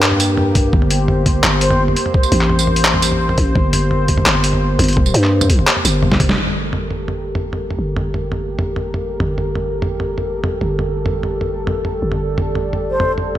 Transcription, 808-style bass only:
Already playing: G2
0.73 G1
1.43 G1
2.32 A1
3.38 A1
3.56 G1
4.26 G1
4.79 G1
5.14 G2
5.85 G1
6.38 G1
7.79 G1
9.20 G1
10.61 G1
12.02 G1

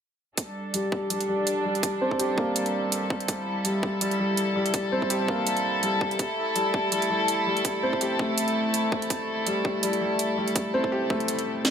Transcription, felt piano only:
0.74 G3
1.10 G3
1.29 G3
1.65 G3
2.01 C4
2.20 G4
2.38 A#3
3.65 G3
4.01 G3
4.20 G3
4.56 G3
4.92 C4
5.10 G4
5.29 A#3
5.83 G3
6.56 G3
6.92 G3
7.10 G3
7.47 G3
7.83 C4
8.01 G4
8.19 A3
9.47 G3
9.83 G3
10.01 G3
10.38 G3
10.74 C4
10.92 G4
11.10 A3

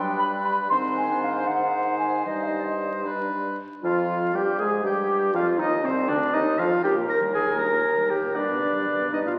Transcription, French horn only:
Already playing: G3
0.70 D#3
1.48 D#3
2.26 G3
3.06 G3
3.83 F3
4.34 G3
4.60 G#3
4.84 G3
5.34 F3
5.59 D#3
5.84 C3
6.09 D3
6.34 D#3
6.59 F3
6.84 G2
6.97 A#2
7.08 D#3
7.21 G3
7.34 D#3
7.46 A#2
7.58 G2
7.72 A#2
7.84 D#3
7.97 G3
8.11 D#3
8.23 A#2
8.35 G2
8.48 B2
8.61 D3
8.74 G3
8.87 D3
8.99 B2
9.14 G2
9.26 B2

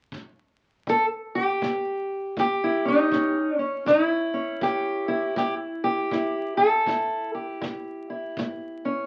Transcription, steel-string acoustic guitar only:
0.87 A2 A4
1.35 G4
1.62 A2
2.37 A2 G4
2.64 E4
2.85 C#4 D#4
3.12 A2 C#4
3.58 C#4
3.86 A2 E4
4.34 C#4
4.61 A2 G4
5.08 E4
5.36 A2 G4
5.84 G4
6.12 A2 E4
6.57 A4
6.87 A2 E4
7.35 G4
7.61 A2
8.10 E4
8.39 A2
8.85 C#4

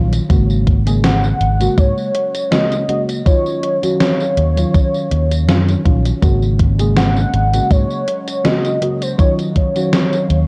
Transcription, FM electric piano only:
Already playing: D#3 F#3 C#4 F4
0.29 C#3 G#3 A#3 F#4
0.86 C#3 G#3 A#3 G#4
1.60 C#3 G#3 A#3 F#4
2.51 C#3 G#3 A#3 F#4
2.88 C#3 G#3 A#3 F#4
3.25 D#3 F#3 C#4 F4
3.82 D#3 F#3 C#4 F#4
4.56 D#3 F#3 C#4 F4
5.47 D#3 F#3 C#4 F4
5.85 D#3 F#3 C#4 F4
6.22 C#3 G#3 A#3 F#4
6.79 C#3 G#3 A#3 G#4
7.53 C#3 G#3 A#3 F#4
8.44 C#3 G#3 A#3 F#4
8.81 C#3 G#3 A#3 F#4
9.18 D#3 F#3 C#4 F4
9.75 D#3 F#3 C#4 F#4

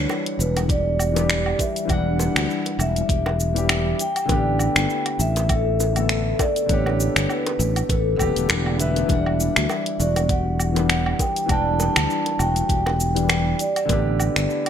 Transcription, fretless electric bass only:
0.39 E1
1.89 E1
2.35 D2
2.79 E1
3.09 E1
4.29 A1
4.76 G1
5.19 A1
6.69 A1
7.16 G1
7.59 A1
7.89 A1
8.19 E1
8.36 E1
8.50 E1
9.10 E1
9.57 D2
10.00 E1
11.49 E1
11.96 D2
12.39 E1
12.69 E1
13.89 A1
14.36 G1

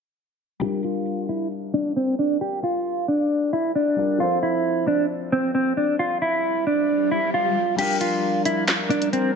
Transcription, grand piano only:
0.60 G3 D4 F4
0.64 A#4
3.96 G3 D4 F4 A#4
4.18 F3 C4 A4
4.23 C5
7.77 G3 D4 F4
7.81 A#4

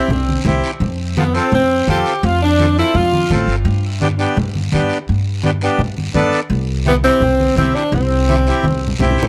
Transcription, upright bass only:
0.08 C2
0.45 C2
0.80 F2
1.52 F2
1.87 F2
2.23 F2
2.94 F2
3.30 A1
3.47 G1
3.65 G2
4.37 G2
4.73 G2
5.09 G2
5.78 G2
6.14 G2
6.50 C2
7.20 C2
7.56 C2
7.92 C2
8.63 C2
8.99 C2

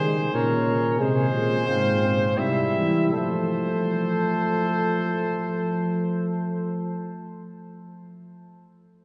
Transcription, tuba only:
Already playing: D#3
0.34 A#2
0.99 C3
1.33 A#2
1.67 G#2
2.39 C3
2.77 E3
3.14 F3

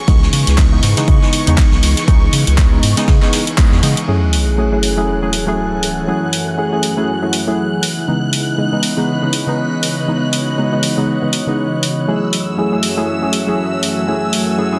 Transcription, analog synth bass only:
0.08 C#2
0.33 C#3
0.47 C#2
0.83 G#2
1.08 C#3
1.47 E2
1.72 B1
1.83 C#2
2.08 C#2
2.33 C#3
2.47 C#2
2.83 G#2
3.08 C#3
3.72 E2
3.83 C#3

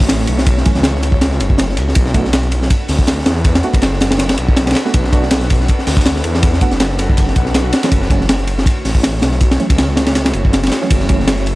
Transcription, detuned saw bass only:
Already playing: A1
0.28 B1
0.76 C#2
1.40 F#1
1.77 C#2
1.96 B1
2.89 D2
3.26 E2
3.74 F#1
4.38 B1
4.94 B1
5.87 D2
6.24 E2
6.72 F#1
7.36 B1
7.92 F#1
8.85 A1
9.22 B1
9.70 C#2
10.34 F#1
10.91 F#1

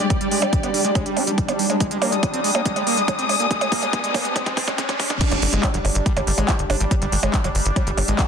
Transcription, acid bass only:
0.10 G3
0.21 G3
0.31 G#3
0.42 G3
0.63 B3
0.74 G3
0.85 G#3
0.95 G#3
1.06 G3
1.17 D4
1.27 G3
1.49 B3
1.59 G3
1.70 G#3
1.80 G#3
1.91 G#3
2.02 A#3
2.12 G#3
2.34 C4
2.44 G#3
2.55 A#3
2.66 G#3
2.76 G#3
2.87 A#3
2.97 G#3
3.19 C4
3.29 G#3
3.40 A#3
3.51 G#3
3.61 G#3
3.72 A#3
3.83 G#3
3.93 G#3
4.04 G#3
4.14 A#3
4.25 G#3
4.36 G#3
4.46 G#3
4.57 G#3
4.68 G#3
4.78 G#3
4.89 G#3
5.00 G#3
5.10 G#3
5.21 G3
5.32 G3
5.42 G3
5.53 G#3
5.63 G3
5.74 F#3
6.06 G3
6.17 G3
6.27 G3
6.38 G#3
6.49 G3
6.70 D4
6.80 G3
6.91 G3
7.02 G3
7.12 G3
7.23 G#3
7.34 G3
7.44 F#3
7.76 G3
7.87 G3
7.97 G3
8.08 G#3
8.19 G3

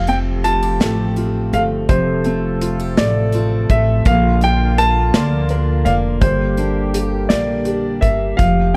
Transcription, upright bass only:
Already playing: F1
0.80 A1
1.53 G1
1.89 F1
2.98 A1
3.70 A1
4.06 A#1
5.14 D2
5.86 F1
6.21 G1
7.30 A#1
8.02 G1
8.39 F1

